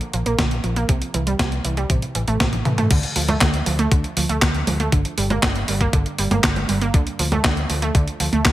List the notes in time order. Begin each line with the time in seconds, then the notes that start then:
0.01 closed hi-hat
0.13 A#1 F3, closed hi-hat
0.26 A#1 A#3, closed hi-hat
0.39 A#1 D3, kick, snare, closed hi-hat
0.51 closed hi-hat
0.64 A#1 F3, closed hi-hat
0.76 A#3, closed hi-hat
0.89 C2 C3, kick, closed hi-hat
1.02 closed hi-hat
1.14 C2 E3, closed hi-hat
1.27 G3, closed hi-hat
1.39 C2 C3, kick, snare, closed hi-hat
1.52 closed hi-hat
1.65 C2 E3, closed hi-hat
1.77 G3, closed hi-hat
1.90 A1 C3, kick, closed hi-hat
2.02 closed hi-hat
2.15 A1 E3, closed hi-hat
2.28 A1 A3, closed hi-hat
2.40 A1 C3, kick, snare, closed hi-hat
2.53 closed hi-hat, high tom
2.65 A2 E3, closed hi-hat, mid tom
2.78 A3, closed hi-hat, mid tom
2.91 D2 D3, kick, closed hi-hat, crash
3.03 closed hi-hat
3.16 D2 F3, open hi-hat
3.28 A3, closed hi-hat, high conga
3.41 D2 D3, kick, snare, clap, closed hi-hat
3.54 closed hi-hat
3.66 D2 F3, open hi-hat
3.79 A3, closed hi-hat
3.92 D2 D3, kick, closed hi-hat
4.04 closed hi-hat
4.17 D2 F3, open hi-hat
4.29 D2 A3, closed hi-hat
4.42 D2 D3, kick, snare, clap, closed hi-hat
4.55 closed hi-hat
4.67 D2 F3, open hi-hat, high conga
4.80 A3, closed hi-hat
4.92 G1 D3, kick, closed hi-hat
5.05 closed hi-hat
5.18 G1 G3, open hi-hat
5.30 A#3, closed hi-hat, high conga
5.43 G1 D3, kick, snare, clap, closed hi-hat
5.56 closed hi-hat
5.68 G1 G3, open hi-hat
5.81 A#3, kick, closed hi-hat
5.93 G1 D3, kick, closed hi-hat
6.06 closed hi-hat
6.18 G1 G3, open hi-hat
6.31 G1 A#3, closed hi-hat, high conga
6.44 G1 D3, kick, snare, clap, closed hi-hat
6.56 closed hi-hat, high conga
6.69 G1 G3, open hi-hat
6.81 A#3, closed hi-hat
6.94 D2 D3, kick, closed hi-hat
7.07 closed hi-hat
7.19 D2 F3, open hi-hat
7.32 A3, closed hi-hat, high conga
7.44 D2 D3, kick, snare, clap, closed hi-hat
7.57 closed hi-hat
7.70 D2 F3, open hi-hat
7.82 A3, closed hi-hat
7.95 D2 D3, kick, closed hi-hat
8.08 closed hi-hat
8.20 D2 F3, open hi-hat
8.33 D2 A3, closed hi-hat
8.45 D2 D3, kick, snare, clap, closed hi-hat